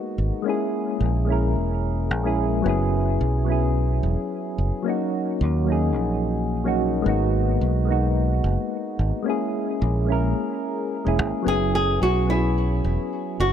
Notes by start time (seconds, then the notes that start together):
Already playing: G#3 A#3 B3 D#4 F#4
0.18 G#1
0.42 G#3 A#3 C#4
0.48 E4 G#4
1.00 A#1
1.25 G#3 A#3 C#4
1.30 E4 A#4
1.56 E1
2.11 A#1
2.23 G#3 A#3 C#4 E4 G#4
2.62 F#1 F#3 B3 C#4
2.67 E4 G#4
3.21 B1
3.45 F#3 B3 C#4
3.50 E4 G#4
4.03 E1
4.58 F#1
4.83 F#3 A#3 C#4
4.88 D#4 F#4
5.41 D#2
5.65 F#3 A#3 C#4
5.70 D#4 G#4
5.96 A#1
6.64 F#3 A#3 C#4 D#4 F#4
7.02 G#1 G#3 A#3 B3
7.08 D#4 F#4
7.61 B1
7.85 G#3 A#3 B3
7.91 D#4 F#4
8.44 F#1
8.99 G#1
9.23 G#3 A#3 C#4
9.28 E4 G#4
9.82 A#1
10.05 G#3 A#3 C#4
10.10 E4 A#4
11.05 E1 G#3 A#3 C#4 E4 G#4
11.19 G#1
11.43 F#1 F#3 B3 C#4
11.48 E4 G#4
11.75 G#4
12.02 B1 F#4
12.25 F#3 B3 C#4
12.30 E4 G#4
12.84 E1
13.40 F#1 F#4